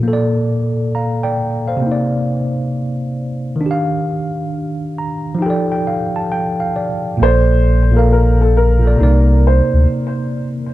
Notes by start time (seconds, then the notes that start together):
Already playing: A#2
0.03 A#3
0.08 A4
0.13 D5
0.95 F5 A#5
1.23 D5 G5
1.67 C5 F5
1.77 C3
1.82 A#3
1.87 D#4
1.92 D5
3.56 D#3
3.61 D4
3.66 G4
3.71 F5
4.99 A#5
5.35 F3
5.39 D#4 G4 G5
5.46 A4 D5
5.72 G5
5.87 F5
6.16 A5
6.32 G5
6.60 F5
6.76 D5
7.17 A#1 A#2 A#3
7.22 A4 C5 D5
7.91 A#2 A#3
7.96 A4 A#4 F5
8.12 A#4
8.41 A4
8.57 A#4
8.79 A#2 A#3
8.85 A4 D5
8.96 C3 A#3
9.00 C2 D#4 D5
9.47 C5
9.74 D2